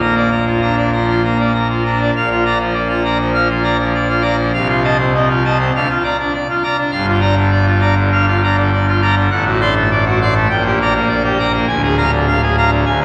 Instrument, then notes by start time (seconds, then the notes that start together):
pipe organ
Already playing: A#1 A#2
0.01 A#3 A#5
0.16 D5
0.31 A#5
0.46 F4
0.61 D4 A#5
0.77 D5
0.93 F3 A#5
1.10 F4
1.24 A#3 A#5
1.40 D5
1.54 A#5
1.70 F4
1.85 D4 A#5
2.02 D5
2.16 A#1 A#2 F5
2.31 F4
2.46 D5 A#5
2.60 F3
2.74 D5
2.89 F4
3.04 D5 A#5
3.20 F3
3.34 F3 F5
3.49 F4
3.63 D5 A#5
3.79 F3
3.94 D5
4.08 F4
4.22 D5 A#5
4.37 F3
4.53 C2 C3 F5
4.69 F4
4.84 D#5 A5
4.99 C4
5.15 D#5
5.29 F4
5.45 D#5 A5
5.59 C4
5.75 D2 D3 F5
5.89 F4
6.04 D5 A#5
6.19 D4
6.33 D5
6.49 F4
6.63 D5 A#5
6.77 D4
6.91 G1 G2 F5
7.06 F4
7.21 D5 A#5
7.36 D3
7.51 D5
7.66 F4
7.80 D5 A#5
7.97 D3
8.12 D3 F5
8.27 F4
8.43 D5 A#5
8.57 D3
8.73 D5
8.88 F4
9.02 D5 A#5
9.17 D3
9.31 A1 A2 F#5
9.46 F#4
9.61 D5 C6
9.76 A3
9.91 D5
10.05 F#4
10.21 D5 C6
10.35 A3
10.49 A#1 A#2 G5
10.66 G4
10.81 D5 A#5
10.95 A#3
11.08 D5
11.25 G4
11.39 D5 A#5
11.54 A#3
11.68 D1 D2 G#5
11.83 G#4
11.97 F5 A#5
12.13 D3
12.28 F5
12.42 G#4
12.57 F5 A#5
12.71 D3
12.86 D1 D2 G#5
13.01 A#3 G#4